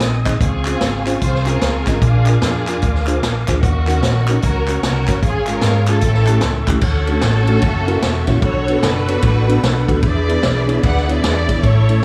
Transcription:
Already playing: C4 D#5 G#5 D#6
0.00 A#1, snare, closed hi-hat
0.25 C4 D#4 G#4 D#5, kick, snare, clap, closed hi-hat
0.39 C#2 C#3 C4 F4 G#4 F5 C#6, kick, closed hi-hat
0.65 C#4 F4 G#4 C5, clap, closed hi-hat
0.81 G#1, snare, closed hi-hat
1.06 C#4 F4 G#4 C5, clap, closed hi-hat
1.21 C2 F4 G#4 C5, kick, closed hi-hat
1.35 snare
1.46 C#4 F4 G#4 A#4 C5, clap, closed hi-hat
1.61 C#2, snare, closed hi-hat
1.86 G#1 C#4 F4 G#4 D#5, kick, snare, clap, closed hi-hat
2.02 A#1 A#2 D4 F4 G#4 A#4 F5 D6, kick, closed hi-hat
2.26 D4 F4 G#4 A#4, clap, closed hi-hat
2.42 F2 D4 F4 G#4, snare, closed hi-hat
2.67 D4 F4 G#4 A#4, clap, closed hi-hat
2.82 D2, kick, closed hi-hat
2.95 snare
3.07 D4 F4 G#4 C5, clap, closed hi-hat
3.23 A#1, snare, closed hi-hat
3.48 D2 D4 F4 G#4 C5, kick, snare, clap, closed hi-hat
3.61 D#2 D#3 A#3 C#4 F#4 D#5 F#5 C#6, kick, closed hi-hat
3.87 C#4 D#4 F#4 A#4, clap, closed hi-hat
4.03 A#1, snare, closed hi-hat
4.28 C#4 D#4 F#4 A#4, clap, closed hi-hat
4.42 C#2 C#3 C#4 F#4 A#4 C#5, kick, closed hi-hat
4.68 A#3 C#4 F#4 A#4, clap, closed hi-hat
4.83 C2 C#4 F#4 A#4, snare, closed hi-hat
5.08 F#1 A#3 C#4 F#4 C#5, kick, snare, clap, closed hi-hat
5.23 G#1 G#2 C#4 F4 G#4 F5, kick, closed hi-hat
5.47 G#3 C#4 F4 G#4 A#4, clap, closed hi-hat
5.61 G#2, snare, closed hi-hat
5.86 G#3 C#4 E4 F4 G#4 A4, clap, closed hi-hat
6.01 A1 A2 A4 E5 G5, kick, closed hi-hat
6.14 snare
6.27 A3 C#4 E4 G4, clap, closed hi-hat
6.41 C#2, snare, closed hi-hat
6.67 C#2 A3 C#4 E4 G4, kick, clap, closed hi-hat
6.81 D2 D3 C#4 F#4 A4 C#5 F#5 C#6, kick, crash
7.07 A3 C#4 D4 F#4 A4, ride
7.21 A1, snare, ride
7.47 A3 C#4 D4 F#4 A4, ride
7.62 F#1 A#3 E5, kick, ride
7.87 A#3 C#4 E4 F#4 A#4, ride
8.01 E1, snare, ride
8.27 A#1 A#3 C#4 E4 F#4 C#5, kick, snare, ride
8.42 B1 B2 D4 F#4 A4 C#5 B5, kick, ride
8.68 B3 D4 F#4 A4 B4, ride
8.83 F#1 D4 F#4 B4, snare, ride
9.08 B3 D4 F#4 A4 C#5, ride
9.22 A1, kick, ride
9.48 B3 D4 F#4 A4 B4, ride
9.63 B1, snare, ride
9.88 D2 B3 D4 F#4 A4 B4, kick, ride
10.03 E2 E3 G#4 B4 E5, kick, ride
10.07 D5
10.28 B3 D4 E4 G#4 B4, ride
10.43 B1, snare, ride
10.68 B3 D4 E4 G#4 C#5, ride
10.83 D2 B4 D5 F#5, kick, ride
10.97 snare
11.08 B3 D4 E4 G#4 B4 C#5 D5, ride
11.23 E2, snare, ride
11.48 G#1 B3 D4 E4 G#4 C#5, kick, snare, ride
11.61 A1 A2 E4 A4 C#5 C#6, kick, ride
11.89 A3 C#4 E4 A4 C#5, ride

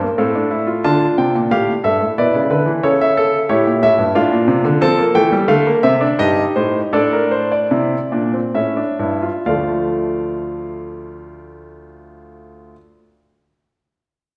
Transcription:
Already playing: C5 G5
0.01 A#3
0.18 A2 C4 A4 F5
0.35 D4
0.51 E4
0.67 F4
0.84 D3 D4 F4 A5
1.18 C3 G5
1.35 A#2
1.51 A2 G4 F5
1.84 G2 A4 E5
2.01 A2
2.18 B2 E4 B4 D5
2.34 C#3
2.50 D3 B4
2.66 E3
2.83 C#3 A4 C#5
3.01 E5
3.17 A4
3.49 A2 E4 G4 C#5
3.66 A#2
3.83 A2 E5
3.99 G2
4.15 A2 D4 F4 F5
4.32 A#2
4.48 C3
4.65 D3
4.81 F3 C4 A4 A5
4.98 A#3
5.15 E3 A3 G5
5.32 G3
5.48 D3 A3 F5
5.67 A#3
5.83 C3 C4 E5
6.01 D4
6.19 G2 D#4 G4 D#5
6.56 A2 C5
6.93 A2 D4 A4 D5
7.13 A#4
7.31 C5
7.52 D5
7.71 C3 E4
8.12 A#2 D4
8.34 C4
8.54 A2 C#4 E5
8.77 D4
8.99 G2 E4
9.22 F4
9.46 D2 F3 A3 F4 D5 F5

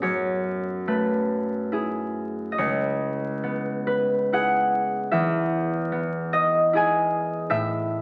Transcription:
Already playing: B3 C#4 G#4 B4 E5
0.02 F#2 C#5
0.87 A3 B4
1.72 E4 G#4
2.52 D#5
2.58 C#2 C#5
3.43 B3
3.87 B4
4.32 E4 G#4 F#5
5.11 E2 E5
5.92 B3
6.33 D#5
6.73 E4 G#4 G#5
7.50 A2 E5

